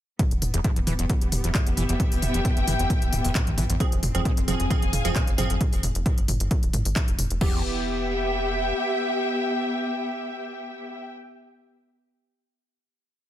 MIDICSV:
0, 0, Header, 1, 6, 480
1, 0, Start_track
1, 0, Key_signature, 1, "minor"
1, 0, Tempo, 451128
1, 206, Time_signature, 4, 2, 24, 8
1, 14146, End_track
2, 0, Start_track
2, 0, Title_t, "String section"
2, 0, Program_c, 0, 48
2, 208, Note_on_c, 0, 59, 85
2, 648, Note_on_c, 0, 67, 79
2, 1588, Note_on_c, 0, 76, 74
2, 1937, Note_on_c, 0, 79, 98
2, 4046, Note_off_c, 0, 67, 0
2, 4046, Note_off_c, 0, 76, 0
2, 4046, Note_off_c, 0, 79, 0
2, 4046, Note_on_c, 0, 60, 78
2, 4047, Note_off_c, 0, 59, 0
2, 4697, Note_on_c, 0, 68, 88
2, 4802, Note_on_c, 0, 80, 78
2, 4917, Note_on_c, 0, 77, 68
2, 5966, Note_off_c, 0, 60, 0
2, 5966, Note_off_c, 0, 68, 0
2, 5966, Note_off_c, 0, 80, 0
2, 5967, Note_off_c, 0, 77, 0
2, 7887, Note_on_c, 0, 59, 77
2, 7962, Note_on_c, 0, 67, 77
2, 8034, Note_on_c, 0, 76, 83
2, 8103, Note_on_c, 0, 79, 82
2, 11586, Note_off_c, 0, 59, 0
2, 11661, Note_off_c, 0, 67, 0
2, 11733, Note_off_c, 0, 76, 0
2, 11802, Note_off_c, 0, 79, 0
2, 14146, End_track
3, 0, Start_track
3, 0, Title_t, "Synth stab"
3, 0, Program_c, 1, 62
3, 4046, Note_on_c, 1, 53, 90
3, 4046, Note_on_c, 1, 60, 82
3, 4046, Note_on_c, 1, 68, 105
3, 4172, Note_off_c, 1, 53, 0
3, 4172, Note_off_c, 1, 60, 0
3, 4172, Note_off_c, 1, 68, 0
3, 4413, Note_on_c, 1, 53, 85
3, 4413, Note_on_c, 1, 60, 76
3, 4413, Note_on_c, 1, 68, 92
3, 4600, Note_off_c, 1, 53, 0
3, 4600, Note_off_c, 1, 60, 0
3, 4600, Note_off_c, 1, 68, 0
3, 4766, Note_on_c, 1, 53, 88
3, 4766, Note_on_c, 1, 60, 83
3, 4766, Note_on_c, 1, 68, 104
3, 4959, Note_off_c, 1, 53, 0
3, 4959, Note_off_c, 1, 60, 0
3, 4959, Note_off_c, 1, 68, 0
3, 5006, Note_on_c, 1, 53, 94
3, 5006, Note_on_c, 1, 60, 86
3, 5006, Note_on_c, 1, 68, 105
3, 5199, Note_off_c, 1, 53, 0
3, 5199, Note_off_c, 1, 60, 0
3, 5199, Note_off_c, 1, 68, 0
3, 5372, Note_on_c, 1, 53, 98
3, 5372, Note_on_c, 1, 60, 91
3, 5372, Note_on_c, 1, 68, 107
3, 5560, Note_off_c, 1, 53, 0
3, 5560, Note_off_c, 1, 60, 0
3, 5560, Note_off_c, 1, 68, 0
3, 5726, Note_on_c, 1, 53, 100
3, 5726, Note_on_c, 1, 60, 92
3, 5726, Note_on_c, 1, 68, 109
3, 5851, Note_off_c, 1, 53, 0
3, 5851, Note_off_c, 1, 60, 0
3, 5851, Note_off_c, 1, 68, 0
3, 7886, Note_on_c, 1, 52, 86
3, 7886, Note_on_c, 1, 59, 82
3, 7886, Note_on_c, 1, 67, 101
3, 11585, Note_off_c, 1, 52, 0
3, 11585, Note_off_c, 1, 59, 0
3, 11585, Note_off_c, 1, 67, 0
3, 14146, End_track
4, 0, Start_track
4, 0, Title_t, "Acid bass"
4, 0, Program_c, 2, 38
4, 206, Note_on_c, 2, 40, 80
4, 247, Note_off_c, 2, 40, 0
4, 572, Note_on_c, 2, 40, 103
4, 635, Note_off_c, 2, 40, 0
4, 686, Note_on_c, 2, 45, 109
4, 755, Note_off_c, 2, 45, 0
4, 812, Note_on_c, 2, 40, 107
4, 850, Note_off_c, 2, 40, 0
4, 925, Note_on_c, 2, 52, 80
4, 995, Note_off_c, 2, 52, 0
4, 1052, Note_on_c, 2, 40, 78
4, 1115, Note_off_c, 2, 40, 0
4, 1166, Note_on_c, 2, 40, 87
4, 1208, Note_off_c, 2, 40, 0
4, 1532, Note_on_c, 2, 40, 105
4, 1595, Note_off_c, 2, 40, 0
4, 1646, Note_on_c, 2, 45, 104
4, 1715, Note_off_c, 2, 45, 0
4, 1772, Note_on_c, 2, 40, 106
4, 1810, Note_off_c, 2, 40, 0
4, 1885, Note_on_c, 2, 52, 81
4, 1955, Note_off_c, 2, 52, 0
4, 2012, Note_on_c, 2, 40, 77
4, 2075, Note_off_c, 2, 40, 0
4, 2126, Note_on_c, 2, 40, 84
4, 2168, Note_off_c, 2, 40, 0
4, 2492, Note_on_c, 2, 40, 106
4, 2555, Note_off_c, 2, 40, 0
4, 2606, Note_on_c, 2, 45, 106
4, 2675, Note_off_c, 2, 45, 0
4, 2732, Note_on_c, 2, 40, 102
4, 2770, Note_off_c, 2, 40, 0
4, 2845, Note_on_c, 2, 52, 73
4, 2915, Note_off_c, 2, 52, 0
4, 2972, Note_on_c, 2, 40, 80
4, 3035, Note_off_c, 2, 40, 0
4, 3086, Note_on_c, 2, 40, 83
4, 3127, Note_off_c, 2, 40, 0
4, 3452, Note_on_c, 2, 40, 104
4, 3515, Note_off_c, 2, 40, 0
4, 3566, Note_on_c, 2, 45, 99
4, 3635, Note_off_c, 2, 45, 0
4, 3692, Note_on_c, 2, 40, 101
4, 3730, Note_off_c, 2, 40, 0
4, 3805, Note_on_c, 2, 52, 83
4, 3875, Note_off_c, 2, 52, 0
4, 3932, Note_on_c, 2, 40, 81
4, 3995, Note_off_c, 2, 40, 0
4, 4045, Note_on_c, 2, 41, 82
4, 4087, Note_off_c, 2, 41, 0
4, 4412, Note_on_c, 2, 41, 107
4, 4475, Note_off_c, 2, 41, 0
4, 4526, Note_on_c, 2, 46, 110
4, 4595, Note_off_c, 2, 46, 0
4, 4652, Note_on_c, 2, 41, 110
4, 4690, Note_off_c, 2, 41, 0
4, 4766, Note_on_c, 2, 53, 80
4, 4836, Note_off_c, 2, 53, 0
4, 4892, Note_on_c, 2, 41, 78
4, 4955, Note_off_c, 2, 41, 0
4, 5006, Note_on_c, 2, 41, 87
4, 5048, Note_off_c, 2, 41, 0
4, 5372, Note_on_c, 2, 41, 98
4, 5435, Note_off_c, 2, 41, 0
4, 5486, Note_on_c, 2, 46, 101
4, 5555, Note_off_c, 2, 46, 0
4, 5612, Note_on_c, 2, 41, 101
4, 5650, Note_off_c, 2, 41, 0
4, 5726, Note_on_c, 2, 53, 76
4, 5795, Note_off_c, 2, 53, 0
4, 5853, Note_on_c, 2, 41, 77
4, 5915, Note_off_c, 2, 41, 0
4, 7886, Note_on_c, 2, 40, 93
4, 8109, Note_off_c, 2, 40, 0
4, 14146, End_track
5, 0, Start_track
5, 0, Title_t, "Analog synth bass"
5, 0, Program_c, 3, 38
5, 333, Note_on_c, 3, 28, 90
5, 424, Note_off_c, 3, 28, 0
5, 446, Note_on_c, 3, 28, 100
5, 547, Note_off_c, 3, 28, 0
5, 573, Note_on_c, 3, 28, 95
5, 664, Note_off_c, 3, 28, 0
5, 813, Note_on_c, 3, 28, 88
5, 903, Note_off_c, 3, 28, 0
5, 926, Note_on_c, 3, 28, 96
5, 1028, Note_off_c, 3, 28, 0
5, 1053, Note_on_c, 3, 28, 98
5, 1143, Note_off_c, 3, 28, 0
5, 1293, Note_on_c, 3, 28, 89
5, 1384, Note_off_c, 3, 28, 0
5, 1407, Note_on_c, 3, 28, 100
5, 1508, Note_off_c, 3, 28, 0
5, 1533, Note_on_c, 3, 28, 89
5, 1624, Note_off_c, 3, 28, 0
5, 1773, Note_on_c, 3, 30, 88
5, 1864, Note_off_c, 3, 30, 0
5, 1886, Note_on_c, 3, 30, 100
5, 1988, Note_off_c, 3, 30, 0
5, 2013, Note_on_c, 3, 30, 96
5, 2104, Note_off_c, 3, 30, 0
5, 2253, Note_on_c, 3, 28, 91
5, 2344, Note_off_c, 3, 28, 0
5, 2366, Note_on_c, 3, 28, 103
5, 2467, Note_off_c, 3, 28, 0
5, 2492, Note_on_c, 3, 28, 98
5, 2583, Note_off_c, 3, 28, 0
5, 2732, Note_on_c, 3, 30, 86
5, 2823, Note_off_c, 3, 30, 0
5, 2845, Note_on_c, 3, 30, 95
5, 2947, Note_off_c, 3, 30, 0
5, 2972, Note_on_c, 3, 30, 98
5, 3063, Note_off_c, 3, 30, 0
5, 3212, Note_on_c, 3, 26, 88
5, 3303, Note_off_c, 3, 26, 0
5, 3326, Note_on_c, 3, 26, 98
5, 3427, Note_off_c, 3, 26, 0
5, 3452, Note_on_c, 3, 26, 92
5, 3543, Note_off_c, 3, 26, 0
5, 3692, Note_on_c, 3, 33, 91
5, 3783, Note_off_c, 3, 33, 0
5, 3806, Note_on_c, 3, 33, 102
5, 3907, Note_off_c, 3, 33, 0
5, 3932, Note_on_c, 3, 33, 90
5, 4023, Note_off_c, 3, 33, 0
5, 4172, Note_on_c, 3, 29, 86
5, 4263, Note_off_c, 3, 29, 0
5, 4286, Note_on_c, 3, 29, 99
5, 4387, Note_off_c, 3, 29, 0
5, 4412, Note_on_c, 3, 29, 100
5, 4503, Note_off_c, 3, 29, 0
5, 4652, Note_on_c, 3, 29, 87
5, 4743, Note_off_c, 3, 29, 0
5, 4766, Note_on_c, 3, 29, 92
5, 4867, Note_off_c, 3, 29, 0
5, 4892, Note_on_c, 3, 29, 95
5, 4983, Note_off_c, 3, 29, 0
5, 5132, Note_on_c, 3, 29, 90
5, 5223, Note_off_c, 3, 29, 0
5, 5246, Note_on_c, 3, 29, 94
5, 5347, Note_off_c, 3, 29, 0
5, 5372, Note_on_c, 3, 29, 96
5, 5463, Note_off_c, 3, 29, 0
5, 5612, Note_on_c, 3, 31, 92
5, 5703, Note_off_c, 3, 31, 0
5, 5726, Note_on_c, 3, 31, 101
5, 5827, Note_off_c, 3, 31, 0
5, 5852, Note_on_c, 3, 31, 96
5, 5943, Note_off_c, 3, 31, 0
5, 6092, Note_on_c, 3, 29, 93
5, 6183, Note_off_c, 3, 29, 0
5, 6206, Note_on_c, 3, 29, 101
5, 6307, Note_off_c, 3, 29, 0
5, 6332, Note_on_c, 3, 29, 97
5, 6423, Note_off_c, 3, 29, 0
5, 6572, Note_on_c, 3, 31, 81
5, 6663, Note_off_c, 3, 31, 0
5, 6685, Note_on_c, 3, 31, 99
5, 6787, Note_off_c, 3, 31, 0
5, 6812, Note_on_c, 3, 31, 93
5, 6903, Note_off_c, 3, 31, 0
5, 7052, Note_on_c, 3, 27, 90
5, 7143, Note_off_c, 3, 27, 0
5, 7166, Note_on_c, 3, 32, 102
5, 7267, Note_off_c, 3, 32, 0
5, 7292, Note_on_c, 3, 32, 88
5, 7383, Note_off_c, 3, 32, 0
5, 7532, Note_on_c, 3, 29, 91
5, 7623, Note_off_c, 3, 29, 0
5, 7646, Note_on_c, 3, 29, 99
5, 7747, Note_off_c, 3, 29, 0
5, 7773, Note_on_c, 3, 29, 94
5, 7863, Note_off_c, 3, 29, 0
5, 14146, End_track
6, 0, Start_track
6, 0, Title_t, "Drums"
6, 206, Note_on_c, 9, 36, 123
6, 206, Note_on_c, 9, 42, 84
6, 206, Note_on_c, 9, 45, 96
6, 312, Note_off_c, 9, 42, 0
6, 312, Note_off_c, 9, 45, 0
6, 313, Note_off_c, 9, 36, 0
6, 333, Note_on_c, 9, 42, 53
6, 439, Note_off_c, 9, 42, 0
6, 446, Note_on_c, 9, 45, 66
6, 446, Note_on_c, 9, 46, 104
6, 553, Note_off_c, 9, 45, 0
6, 553, Note_off_c, 9, 46, 0
6, 572, Note_on_c, 9, 42, 55
6, 679, Note_off_c, 9, 42, 0
6, 686, Note_on_c, 9, 36, 120
6, 686, Note_on_c, 9, 42, 86
6, 686, Note_on_c, 9, 45, 96
6, 792, Note_off_c, 9, 42, 0
6, 792, Note_off_c, 9, 45, 0
6, 793, Note_off_c, 9, 36, 0
6, 812, Note_on_c, 9, 42, 56
6, 919, Note_off_c, 9, 42, 0
6, 926, Note_on_c, 9, 45, 96
6, 926, Note_on_c, 9, 46, 105
6, 1032, Note_off_c, 9, 45, 0
6, 1032, Note_off_c, 9, 46, 0
6, 1052, Note_on_c, 9, 42, 54
6, 1159, Note_off_c, 9, 42, 0
6, 1166, Note_on_c, 9, 36, 118
6, 1166, Note_on_c, 9, 42, 84
6, 1166, Note_on_c, 9, 45, 68
6, 1272, Note_off_c, 9, 36, 0
6, 1272, Note_off_c, 9, 42, 0
6, 1272, Note_off_c, 9, 45, 0
6, 1292, Note_on_c, 9, 42, 57
6, 1399, Note_off_c, 9, 42, 0
6, 1406, Note_on_c, 9, 45, 90
6, 1406, Note_on_c, 9, 46, 105
6, 1512, Note_off_c, 9, 45, 0
6, 1512, Note_off_c, 9, 46, 0
6, 1532, Note_on_c, 9, 42, 58
6, 1638, Note_off_c, 9, 42, 0
6, 1646, Note_on_c, 9, 36, 124
6, 1646, Note_on_c, 9, 39, 127
6, 1646, Note_on_c, 9, 42, 84
6, 1646, Note_on_c, 9, 45, 91
6, 1752, Note_off_c, 9, 36, 0
6, 1752, Note_off_c, 9, 39, 0
6, 1752, Note_off_c, 9, 42, 0
6, 1752, Note_off_c, 9, 45, 0
6, 1772, Note_on_c, 9, 42, 55
6, 1878, Note_off_c, 9, 42, 0
6, 1886, Note_on_c, 9, 45, 66
6, 1886, Note_on_c, 9, 46, 109
6, 1992, Note_off_c, 9, 45, 0
6, 1992, Note_off_c, 9, 46, 0
6, 2012, Note_on_c, 9, 42, 58
6, 2119, Note_off_c, 9, 42, 0
6, 2126, Note_on_c, 9, 36, 127
6, 2126, Note_on_c, 9, 42, 87
6, 2126, Note_on_c, 9, 45, 94
6, 2232, Note_off_c, 9, 36, 0
6, 2232, Note_off_c, 9, 42, 0
6, 2232, Note_off_c, 9, 45, 0
6, 2252, Note_on_c, 9, 46, 60
6, 2359, Note_off_c, 9, 46, 0
6, 2366, Note_on_c, 9, 45, 90
6, 2366, Note_on_c, 9, 46, 109
6, 2472, Note_off_c, 9, 45, 0
6, 2472, Note_off_c, 9, 46, 0
6, 2492, Note_on_c, 9, 42, 57
6, 2599, Note_off_c, 9, 42, 0
6, 2606, Note_on_c, 9, 36, 124
6, 2606, Note_on_c, 9, 42, 86
6, 2606, Note_on_c, 9, 45, 65
6, 2712, Note_off_c, 9, 36, 0
6, 2712, Note_off_c, 9, 42, 0
6, 2712, Note_off_c, 9, 45, 0
6, 2733, Note_on_c, 9, 42, 57
6, 2839, Note_off_c, 9, 42, 0
6, 2846, Note_on_c, 9, 45, 89
6, 2846, Note_on_c, 9, 46, 107
6, 2953, Note_off_c, 9, 45, 0
6, 2953, Note_off_c, 9, 46, 0
6, 2973, Note_on_c, 9, 42, 54
6, 3079, Note_off_c, 9, 42, 0
6, 3086, Note_on_c, 9, 36, 114
6, 3086, Note_on_c, 9, 42, 84
6, 3086, Note_on_c, 9, 45, 90
6, 3192, Note_off_c, 9, 36, 0
6, 3192, Note_off_c, 9, 42, 0
6, 3192, Note_off_c, 9, 45, 0
6, 3213, Note_on_c, 9, 42, 56
6, 3319, Note_off_c, 9, 42, 0
6, 3326, Note_on_c, 9, 45, 64
6, 3326, Note_on_c, 9, 46, 108
6, 3432, Note_off_c, 9, 45, 0
6, 3432, Note_off_c, 9, 46, 0
6, 3453, Note_on_c, 9, 46, 66
6, 3559, Note_off_c, 9, 46, 0
6, 3566, Note_on_c, 9, 36, 122
6, 3566, Note_on_c, 9, 39, 122
6, 3566, Note_on_c, 9, 42, 82
6, 3566, Note_on_c, 9, 45, 90
6, 3672, Note_off_c, 9, 36, 0
6, 3672, Note_off_c, 9, 39, 0
6, 3672, Note_off_c, 9, 42, 0
6, 3672, Note_off_c, 9, 45, 0
6, 3693, Note_on_c, 9, 42, 52
6, 3799, Note_off_c, 9, 42, 0
6, 3806, Note_on_c, 9, 45, 92
6, 3806, Note_on_c, 9, 46, 112
6, 3912, Note_off_c, 9, 45, 0
6, 3912, Note_off_c, 9, 46, 0
6, 3933, Note_on_c, 9, 42, 58
6, 4039, Note_off_c, 9, 42, 0
6, 4046, Note_on_c, 9, 36, 127
6, 4046, Note_on_c, 9, 42, 85
6, 4046, Note_on_c, 9, 45, 66
6, 4152, Note_off_c, 9, 36, 0
6, 4152, Note_off_c, 9, 42, 0
6, 4152, Note_off_c, 9, 45, 0
6, 4173, Note_on_c, 9, 42, 52
6, 4279, Note_off_c, 9, 42, 0
6, 4286, Note_on_c, 9, 45, 91
6, 4286, Note_on_c, 9, 46, 108
6, 4392, Note_off_c, 9, 45, 0
6, 4392, Note_off_c, 9, 46, 0
6, 4413, Note_on_c, 9, 42, 53
6, 4519, Note_off_c, 9, 42, 0
6, 4526, Note_on_c, 9, 36, 125
6, 4526, Note_on_c, 9, 42, 83
6, 4526, Note_on_c, 9, 45, 87
6, 4632, Note_off_c, 9, 36, 0
6, 4632, Note_off_c, 9, 42, 0
6, 4632, Note_off_c, 9, 45, 0
6, 4652, Note_on_c, 9, 42, 57
6, 4759, Note_off_c, 9, 42, 0
6, 4766, Note_on_c, 9, 45, 64
6, 4766, Note_on_c, 9, 46, 110
6, 4872, Note_off_c, 9, 45, 0
6, 4872, Note_off_c, 9, 46, 0
6, 4892, Note_on_c, 9, 42, 52
6, 4998, Note_off_c, 9, 42, 0
6, 5006, Note_on_c, 9, 36, 119
6, 5006, Note_on_c, 9, 42, 82
6, 5006, Note_on_c, 9, 45, 88
6, 5112, Note_off_c, 9, 42, 0
6, 5112, Note_off_c, 9, 45, 0
6, 5113, Note_off_c, 9, 36, 0
6, 5132, Note_on_c, 9, 42, 53
6, 5239, Note_off_c, 9, 42, 0
6, 5246, Note_on_c, 9, 45, 86
6, 5246, Note_on_c, 9, 46, 117
6, 5352, Note_off_c, 9, 45, 0
6, 5352, Note_off_c, 9, 46, 0
6, 5372, Note_on_c, 9, 42, 59
6, 5479, Note_off_c, 9, 42, 0
6, 5486, Note_on_c, 9, 36, 123
6, 5486, Note_on_c, 9, 39, 120
6, 5486, Note_on_c, 9, 42, 80
6, 5486, Note_on_c, 9, 45, 66
6, 5592, Note_off_c, 9, 36, 0
6, 5592, Note_off_c, 9, 39, 0
6, 5592, Note_off_c, 9, 42, 0
6, 5592, Note_off_c, 9, 45, 0
6, 5612, Note_on_c, 9, 42, 50
6, 5718, Note_off_c, 9, 42, 0
6, 5726, Note_on_c, 9, 45, 94
6, 5726, Note_on_c, 9, 46, 116
6, 5832, Note_off_c, 9, 45, 0
6, 5832, Note_off_c, 9, 46, 0
6, 5852, Note_on_c, 9, 42, 58
6, 5959, Note_off_c, 9, 42, 0
6, 5966, Note_on_c, 9, 36, 127
6, 5966, Note_on_c, 9, 42, 82
6, 5966, Note_on_c, 9, 45, 97
6, 6072, Note_off_c, 9, 36, 0
6, 6072, Note_off_c, 9, 42, 0
6, 6072, Note_off_c, 9, 45, 0
6, 6092, Note_on_c, 9, 46, 62
6, 6199, Note_off_c, 9, 46, 0
6, 6205, Note_on_c, 9, 45, 61
6, 6205, Note_on_c, 9, 46, 111
6, 6312, Note_off_c, 9, 45, 0
6, 6312, Note_off_c, 9, 46, 0
6, 6332, Note_on_c, 9, 42, 52
6, 6439, Note_off_c, 9, 42, 0
6, 6446, Note_on_c, 9, 36, 127
6, 6446, Note_on_c, 9, 42, 81
6, 6446, Note_on_c, 9, 45, 93
6, 6552, Note_off_c, 9, 36, 0
6, 6552, Note_off_c, 9, 42, 0
6, 6552, Note_off_c, 9, 45, 0
6, 6572, Note_on_c, 9, 42, 52
6, 6678, Note_off_c, 9, 42, 0
6, 6685, Note_on_c, 9, 45, 88
6, 6685, Note_on_c, 9, 46, 108
6, 6792, Note_off_c, 9, 45, 0
6, 6792, Note_off_c, 9, 46, 0
6, 6812, Note_on_c, 9, 42, 53
6, 6918, Note_off_c, 9, 42, 0
6, 6925, Note_on_c, 9, 42, 78
6, 6925, Note_on_c, 9, 45, 69
6, 6926, Note_on_c, 9, 36, 119
6, 7032, Note_off_c, 9, 36, 0
6, 7032, Note_off_c, 9, 42, 0
6, 7032, Note_off_c, 9, 45, 0
6, 7052, Note_on_c, 9, 42, 55
6, 7158, Note_off_c, 9, 42, 0
6, 7165, Note_on_c, 9, 45, 91
6, 7165, Note_on_c, 9, 46, 105
6, 7272, Note_off_c, 9, 45, 0
6, 7272, Note_off_c, 9, 46, 0
6, 7292, Note_on_c, 9, 46, 69
6, 7398, Note_off_c, 9, 46, 0
6, 7405, Note_on_c, 9, 39, 117
6, 7405, Note_on_c, 9, 42, 80
6, 7405, Note_on_c, 9, 45, 97
6, 7406, Note_on_c, 9, 36, 127
6, 7512, Note_off_c, 9, 36, 0
6, 7512, Note_off_c, 9, 39, 0
6, 7512, Note_off_c, 9, 42, 0
6, 7512, Note_off_c, 9, 45, 0
6, 7532, Note_on_c, 9, 42, 52
6, 7639, Note_off_c, 9, 42, 0
6, 7646, Note_on_c, 9, 45, 65
6, 7646, Note_on_c, 9, 46, 120
6, 7752, Note_off_c, 9, 45, 0
6, 7752, Note_off_c, 9, 46, 0
6, 7772, Note_on_c, 9, 42, 51
6, 7879, Note_off_c, 9, 42, 0
6, 7886, Note_on_c, 9, 36, 125
6, 7886, Note_on_c, 9, 49, 89
6, 7992, Note_off_c, 9, 36, 0
6, 7992, Note_off_c, 9, 49, 0
6, 14146, End_track
0, 0, End_of_file